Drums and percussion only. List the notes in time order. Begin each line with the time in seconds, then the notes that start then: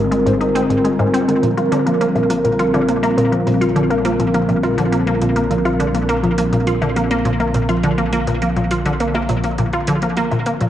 0.12 closed hi-hat
0.27 closed hi-hat
0.41 closed hi-hat
0.56 closed hi-hat
0.70 closed hi-hat
0.85 closed hi-hat
0.99 closed hi-hat, low woodblock
1.14 closed hi-hat
1.29 closed hi-hat
1.43 closed hi-hat
1.58 closed hi-hat
1.72 closed hi-hat
1.87 closed hi-hat
2.01 closed hi-hat
2.16 closed hi-hat, low woodblock
2.30 closed hi-hat
2.45 closed hi-hat
2.59 closed hi-hat
2.74 closed hi-hat, low woodblock
2.88 closed hi-hat
3.03 closed hi-hat, low woodblock
3.18 closed hi-hat
3.32 closed hi-hat
3.47 closed hi-hat
3.62 closed hi-hat
3.76 closed hi-hat
3.91 closed hi-hat
4.05 closed hi-hat
4.20 closed hi-hat
4.34 closed hi-hat
4.49 closed hi-hat, low woodblock
4.63 closed hi-hat, low woodblock
4.78 closed hi-hat
4.93 closed hi-hat
5.07 closed hi-hat
5.22 closed hi-hat
5.36 closed hi-hat
5.51 closed hi-hat
5.66 closed hi-hat, low woodblock
5.80 closed hi-hat
5.95 closed hi-hat
6.09 closed hi-hat
6.24 closed hi-hat
6.38 closed hi-hat
6.53 closed hi-hat
6.67 closed hi-hat
6.82 closed hi-hat, low woodblock
6.96 closed hi-hat
7.11 closed hi-hat
7.25 closed hi-hat
7.40 closed hi-hat, low woodblock
7.54 closed hi-hat
7.69 closed hi-hat, low woodblock
7.83 closed hi-hat
7.98 closed hi-hat
8.13 closed hi-hat
8.27 closed hi-hat
8.42 closed hi-hat
8.56 closed hi-hat
8.71 closed hi-hat
8.85 closed hi-hat
9.00 closed hi-hat
9.14 closed hi-hat, low woodblock
9.29 closed hi-hat, low woodblock
9.44 closed hi-hat
9.58 closed hi-hat
9.73 closed hi-hat
9.87 closed hi-hat
10.02 closed hi-hat
10.16 closed hi-hat
10.31 closed hi-hat, low woodblock
10.46 closed hi-hat
10.60 closed hi-hat